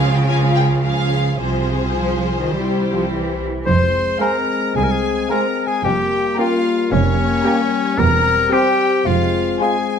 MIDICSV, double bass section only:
0, 0, Header, 1, 2, 480
1, 0, Start_track
1, 0, Key_signature, -4, "minor"
1, 0, Tempo, 561272
1, 1195, Time_signature, 4, 2, 24, 8
1, 3131, Tempo, 541516
1, 8743, End_track
2, 0, Start_track
2, 0, Title_t, "Double bass section"
2, 0, Program_c, 0, 48
2, 0, Note_on_c, 0, 37, 60
2, 1160, Note_off_c, 0, 37, 0
2, 1197, Note_on_c, 0, 36, 50
2, 2152, Note_off_c, 0, 36, 0
2, 2176, Note_on_c, 0, 36, 54
2, 2946, Note_off_c, 0, 36, 0
2, 3136, Note_on_c, 0, 29, 68
2, 3518, Note_off_c, 0, 29, 0
2, 4105, Note_on_c, 0, 36, 74
2, 4485, Note_off_c, 0, 36, 0
2, 5060, Note_on_c, 0, 29, 62
2, 5438, Note_off_c, 0, 29, 0
2, 6015, Note_on_c, 0, 29, 88
2, 6392, Note_off_c, 0, 29, 0
2, 6973, Note_on_c, 0, 28, 82
2, 7346, Note_off_c, 0, 28, 0
2, 7919, Note_on_c, 0, 29, 70
2, 8301, Note_off_c, 0, 29, 0
2, 8743, End_track
0, 0, End_of_file